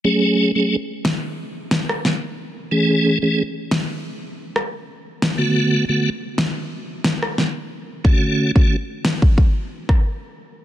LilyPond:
<<
  \new Staff \with { instrumentName = "Tonewheel organ" } { \time 4/4 \key fis \minor \tempo 4 = 90 <fis a cis' gis'>8. <fis a cis' gis'>16 r2. | <e a cis' gis'>8. <e a cis' gis'>16 r2. | <d a b fis'>8. <d a b fis'>16 r2. | <d a cis' fis'>8. <d a cis' fis'>16 r2. | }
  \new DrumStaff \with { instrumentName = "Drums" } \drummode { \time 4/4 r4 r8 sn8 r8 sn16 ss16 sn4 | r4 r8 sn8 r8. ss16 r8. sn16 | r4 r8 sn8 r8 sn16 ss16 sn4 | bd8. bd16 r8 sn16 bd16 bd8. <bd ss>16 r4 | }
>>